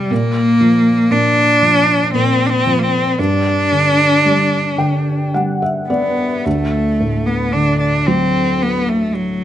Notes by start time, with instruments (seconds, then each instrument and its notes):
Already playing: felt piano C3 G3, cello G3
0.11 felt piano A#2, cello A#3
0.61 felt piano F3
1.11 felt piano A#2, cello D4
1.62 felt piano F3
2.14 felt piano A#2, cello C4
2.46 cello C4 D4
2.66 felt piano F3
2.79 cello A#3 C4
3.19 felt piano G2, cello D4
3.72 felt piano D3
4.25 felt piano G3
4.78 felt piano D3 G5
5.34 felt piano G3 F#5
5.62 felt piano E5
5.90 cello B3, felt piano B3 D5
6.46 felt piano D2, cello A3
7.00 felt piano A2
7.26 cello B3
7.53 felt piano D3, cello D4
7.80 cello D4
8.06 felt piano F#3, cello C4
8.62 cello B3
8.89 cello A3
9.14 cello F#3